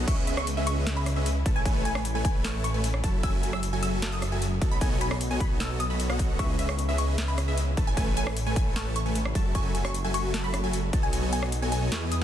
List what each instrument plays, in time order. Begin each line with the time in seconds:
Already playing: string section C#3 G#3 B3
0.08 detuned saw bass C#2, string section E3 E4, supersaw synth C#4 G#4 B4 D#5 E5, synth pluck E5 C#6, kick, closed hi-hat, crash
0.27 supersaw synth C#4 G#4 B4 D#5 E5, synth pluck E5, closed hi-hat
0.37 synth pluck C#6, cross-stick
0.47 closed hi-hat
0.57 supersaw synth C#4 G#4 B4 D#5 E5, synth pluck E5
0.67 synth pluck C#6, closed hi-hat
0.86 supersaw synth C#4 G#4 B4 E5, synth pluck E5, snare, closed hi-hat
0.97 synth pluck B5
1.06 cross-stick, closed hi-hat
1.16 supersaw synth C#4 G#4 B4 D#5 E5, synth pluck E5
1.26 closed hi-hat
1.46 detuned saw bass A1, string section E3 A3, supersaw synth A3 A4 B4 C#5 A5, synth pluck A5, kick, closed hi-hat
1.56 synth pluck G#5
1.65 supersaw synth A3 A4 B4 C#5 G#5, synth pluck G#5, kick, closed hi-hat
1.85 supersaw synth A3 A4 B4 C#5 G#5, synth pluck G#5, closed hi-hat
1.95 cross-stick
2.05 closed hi-hat
2.15 supersaw synth A3 A4 B4 C#5 G#5, synth pluck G#5
2.25 synth pluck G#5, kick, closed hi-hat
2.44 supersaw synth A3 A4 B4 C#5 A5, synth pluck A5 C#6, snare, closed hi-hat
2.64 synth pluck C#6, closed hi-hat
2.74 supersaw synth A3 A4 B4 C#5 G#5, synth pluck G#5
2.84 closed hi-hat
2.94 cross-stick
3.04 detuned saw bass F#1, supersaw synth F#3 F#4 A4 E5 A5, string section F#3, synth pluck A5, kick, closed hi-hat
3.23 supersaw synth F#3 F#4 A4 E5 G#5, synth pluck G#5 E6, kick, closed hi-hat
3.43 supersaw synth F#3 F#4 A4 E5 G#5, synth pluck G#5, closed hi-hat
3.53 synth pluck E6, cross-stick
3.63 closed hi-hat
3.73 supersaw synth F#3 F#4 A4 E5 G#5, synth pluck G#5
3.83 synth pluck E6, closed hi-hat
4.02 supersaw synth F#3 F#4 A4 E5, synth pluck A5, snare, closed hi-hat
4.12 synth pluck D#6
4.22 cross-stick, closed hi-hat
4.32 supersaw synth F#3 F#4 A4 E5 G#5, synth pluck G#5
4.42 closed hi-hat
4.62 detuned saw bass B1, string section C#3 G#3 B3 D#4, supersaw synth B3 F#4 A4 C#5 D#5 A5, synth pluck A5, kick, closed hi-hat
4.71 synth pluck B5
4.81 supersaw synth B3 F#4 A4 C#5 D#5 G#5, synth pluck G#5, kick, closed hi-hat
5.01 supersaw synth B3 F#4 A4 C#5 D#5 G#5, synth pluck G#5 B5, closed hi-hat
5.11 cross-stick
5.21 closed hi-hat
5.31 supersaw synth B3 F#4 A4 C#5 D#5 G#5, synth pluck G#5
5.40 synth pluck B5, kick, closed hi-hat
5.60 supersaw synth B3 F#4 A4 C#5 D#5 A5, synth pluck A5 E6, snare, closed hi-hat
5.80 synth pluck D#6, closed hi-hat
5.90 supersaw synth B3 F#4 A4 C#5 D#5 B5, synth pluck B5
6.00 closed hi-hat
6.10 supersaw synth B3 F#4 A4 C#5 D#5 F#5, synth pluck F#5, cross-stick
6.19 kick, closed hi-hat
6.39 detuned saw bass C#2, string section E3 E4, supersaw synth C#4 G#4 B4 D#5 E5, synth pluck E5 C#6, kick, closed hi-hat
6.59 supersaw synth C#4 G#4 B4 D#5 E5, synth pluck E5, closed hi-hat
6.69 synth pluck C#6, cross-stick
6.79 closed hi-hat
6.89 supersaw synth C#4 G#4 B4 D#5 E5, synth pluck E5
6.98 synth pluck C#6, closed hi-hat
7.18 supersaw synth G#4, synth pluck E5, snare, closed hi-hat
7.28 synth pluck B5
7.38 cross-stick, closed hi-hat
7.48 supersaw synth C#4 G#4 B4 D#5 E5, synth pluck E5
7.58 closed hi-hat
7.77 detuned saw bass A1, supersaw synth A3 A4 B4 C#5 A5, string section A3, synth pluck A5, kick, closed hi-hat
7.87 synth pluck G#5
7.97 supersaw synth A3 A4 B4 C#5 G#5, synth pluck G#5, kick, closed hi-hat
8.17 supersaw synth A3 A4 B4 C#5 G#5, synth pluck G#5, closed hi-hat
8.27 cross-stick
8.37 closed hi-hat
8.46 supersaw synth A3 A4 B4 C#5 G#5, synth pluck G#5
8.56 synth pluck G#5, kick, closed hi-hat
8.76 supersaw synth A3 A4 B4 A5, synth pluck A5 C#6, snare, closed hi-hat
8.96 synth pluck C#6, closed hi-hat
9.06 supersaw synth A3 A4 B4 C#5 G#5, synth pluck G#5
9.15 closed hi-hat
9.25 cross-stick
9.35 detuned saw bass F#1, string section F#3 A3, supersaw synth F#3 F#4 A4 E5 A5, synth pluck A5, kick, closed hi-hat
9.55 supersaw synth F#3 F#4 A4 E5 G#5, synth pluck G#5 C#6, kick, closed hi-hat
9.75 supersaw synth F#3 F#4 A4 E5 G#5, synth pluck G#5, closed hi-hat
9.85 synth pluck C#6, cross-stick
9.94 closed hi-hat
10.04 supersaw synth F#3 F#4 A4 E5 G#5, synth pluck G#5
10.14 synth pluck C#6, closed hi-hat
10.34 supersaw synth F#3 F#4 A4 E5 A5, synth pluck A5, snare, closed hi-hat
10.44 synth pluck B5
10.54 cross-stick, closed hi-hat
10.64 supersaw synth F#3 F#4 A4 E5 G#5, synth pluck G#5
10.73 closed hi-hat
10.93 detuned saw bass B1, supersaw synth B3 F#4 A4 C#5 D#5 A5, string section B3 D#4, synth pluck A5, kick, closed hi-hat
11.03 synth pluck G#5
11.13 supersaw synth B3 F#4 A4 C#5 D#5 G#5, synth pluck G#5, closed hi-hat
11.33 supersaw synth B3 F#4 A4 C#5 D#5 G#5, synth pluck G#5, closed hi-hat
11.43 cross-stick
11.52 closed hi-hat
11.62 supersaw synth B3 F#4 A4 C#5 D#5 G#5, synth pluck G#5
11.72 synth pluck G#5, closed hi-hat
11.92 detuned saw bass E2, supersaw synth E3 E4, string section F#3 G#3 D#4 E4, synth pluck G#5 C#6, snare, closed hi-hat
12.12 synth pluck D#6, closed hi-hat